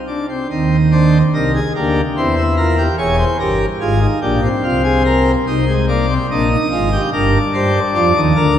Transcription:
0.07 D4
0.29 C4
0.50 D#2 D#3 C4
0.92 D4 C5
1.34 C2 C3 D#4 A#4
1.55 G#4
1.75 D2 D3 A#3 G4
2.17 E2 E3 C4 C5
2.37 E4
2.57 F4 A#4
2.78 G4
2.98 E1 E2 G#4 C#5
3.18 C5
3.39 G1 G2 G4 A#4
3.81 G#1 G#2 F4 G#4
4.01 D#4
4.21 A#1 A#2 D4 G4
4.43 C4
4.63 C2 C3 F4
4.84 G#4
5.05 A#4
5.47 C2 C3 D#4 C5
5.68 G#3
5.88 A#3 D5
6.09 C4
6.31 A#1 A#2 D4 D#5
6.51 D#4
6.71 G#1 G#2 F4
6.92 G4
7.13 G1 G2 D4 A#4
7.54 G2 G3 C5
7.94 F2 F3 D5
8.15 D#2 D#3
8.36 D2 D3 A#4

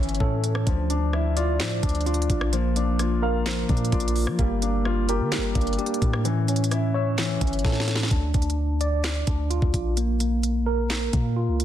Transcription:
Already playing: G1 E3 C#4 E4 C#5 E5
0.03 closed hi-hat
0.09 closed hi-hat
0.15 closed hi-hat
0.20 A2 C#4 A4, kick
0.44 closed hi-hat
0.55 cross-stick
0.66 D2 F3 D4, kick, closed hi-hat
0.90 D4, closed hi-hat
1.13 E4, cross-stick
1.37 F4 D5, closed hi-hat
1.60 A2 F3, snare, clap, closed hi-hat
1.83 D2 D4, kick, closed hi-hat
1.89 closed hi-hat
1.95 closed hi-hat
2.01 closed hi-hat
2.06 D4 F4, closed hi-hat
2.14 closed hi-hat
2.22 closed hi-hat
2.30 A#1, kick, closed hi-hat
2.41 cross-stick
2.53 F3 A#3, closed hi-hat
2.76 A#3 D4, closed hi-hat
2.99 F4, cross-stick, closed hi-hat
3.22 A#4 F5
3.46 F3, snare, clap, closed hi-hat
3.69 A#2 A#3 D4, kick, closed hi-hat
3.77 closed hi-hat
3.85 closed hi-hat
3.92 A#1 D4 F4, kick, closed hi-hat
4.00 closed hi-hat
4.08 closed hi-hat
4.16 open hi-hat
4.27 F3, cross-stick
4.39 G1 G3 A#3, kick, closed hi-hat
4.62 A#3 D4, closed hi-hat
4.85 F4, cross-stick
5.09 G4 A#4, closed hi-hat
5.20 D3
5.32 G3, snare, clap, closed hi-hat
5.38 G1
5.55 G1 A#3 D4, kick, closed hi-hat
5.61 closed hi-hat
5.67 closed hi-hat
5.73 closed hi-hat
5.78 D4 G4, closed hi-hat
5.86 closed hi-hat
5.94 closed hi-hat
6.02 A2, kick, closed hi-hat
6.13 cross-stick
6.25 E3 C#4, closed hi-hat
6.48 C#4, closed hi-hat
6.56 closed hi-hat
6.64 closed hi-hat
6.71 E4, cross-stick, closed hi-hat
6.94 C#5 E5
7.18 E3, snare, clap, closed hi-hat
7.41 G1 C#4, kick, closed hi-hat
7.47 closed hi-hat
7.53 closed hi-hat
7.59 closed hi-hat
7.64 A2 C#4 A4, kick, snare
7.72 snare
7.80 snare
7.88 snare, closed hi-hat
7.96 snare
8.03 snare
8.11 D2 D4, kick, closed hi-hat
8.34 D2 D4, kick, closed hi-hat
8.42 closed hi-hat
8.50 closed hi-hat
8.81 D5, closed hi-hat
9.04 snare, clap, closed hi-hat
9.27 D2 D4, kick, closed hi-hat
9.50 F4, closed hi-hat
9.62 D2, kick
9.74 A#1, kick, closed hi-hat
9.97 A#3, closed hi-hat
10.20 A#3, closed hi-hat
10.43 closed hi-hat
10.66 A#4
10.90 snare, clap, closed hi-hat
11.13 A#2 A#3, kick, closed hi-hat
11.36 F4
11.48 C#2
11.60 closed hi-hat

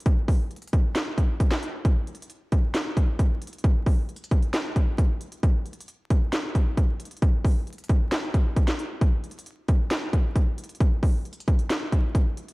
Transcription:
0.00 closed hi-hat
0.06 kick, closed hi-hat
0.28 kick, open hi-hat
0.51 closed hi-hat
0.56 closed hi-hat
0.62 closed hi-hat
0.67 closed hi-hat
0.73 kick, closed hi-hat
0.95 snare, clap, closed hi-hat
1.18 kick, closed hi-hat
1.40 kick, closed hi-hat
1.51 snare, clap
1.63 closed hi-hat
1.85 kick, closed hi-hat
2.07 closed hi-hat
2.15 closed hi-hat
2.22 closed hi-hat
2.30 closed hi-hat
2.52 kick, closed hi-hat
2.75 snare, clap, closed hi-hat
2.97 kick, closed hi-hat
3.19 kick, closed hi-hat
3.42 closed hi-hat
3.47 closed hi-hat
3.53 closed hi-hat
3.58 closed hi-hat
3.64 kick, closed hi-hat
3.86 kick, open hi-hat
4.09 closed hi-hat
4.16 closed hi-hat
4.24 closed hi-hat
4.31 kick, closed hi-hat
4.42 closed hi-hat
4.54 snare, clap, closed hi-hat
4.76 kick, closed hi-hat
4.98 kick, closed hi-hat
5.21 closed hi-hat
5.32 closed hi-hat
5.43 kick, closed hi-hat
5.66 closed hi-hat
5.73 closed hi-hat
5.80 closed hi-hat
5.88 closed hi-hat
6.10 kick, closed hi-hat
6.33 snare, clap, closed hi-hat
6.55 kick, closed hi-hat
6.77 kick, closed hi-hat
7.00 closed hi-hat
7.05 closed hi-hat
7.11 closed hi-hat
7.17 closed hi-hat
7.22 kick, closed hi-hat
7.45 kick, open hi-hat
7.67 closed hi-hat
7.73 closed hi-hat
7.78 closed hi-hat
7.84 closed hi-hat
7.89 kick, closed hi-hat
8.12 snare, clap, closed hi-hat
8.34 kick, closed hi-hat
8.56 kick, closed hi-hat
8.68 snare, clap
8.79 closed hi-hat
9.01 kick, closed hi-hat
9.24 closed hi-hat
9.31 closed hi-hat
9.39 closed hi-hat
9.46 closed hi-hat
9.68 kick, closed hi-hat
9.91 snare, clap, closed hi-hat
10.13 kick, closed hi-hat
10.36 kick, closed hi-hat
10.58 closed hi-hat
10.64 closed hi-hat
10.69 closed hi-hat
10.75 closed hi-hat
10.80 kick, closed hi-hat
11.03 kick, open hi-hat
11.25 closed hi-hat
11.33 closed hi-hat
11.40 closed hi-hat
11.48 kick, closed hi-hat
11.59 closed hi-hat
11.70 snare, clap, closed hi-hat
11.92 kick, closed hi-hat
12.15 kick, closed hi-hat
12.37 closed hi-hat
12.48 closed hi-hat

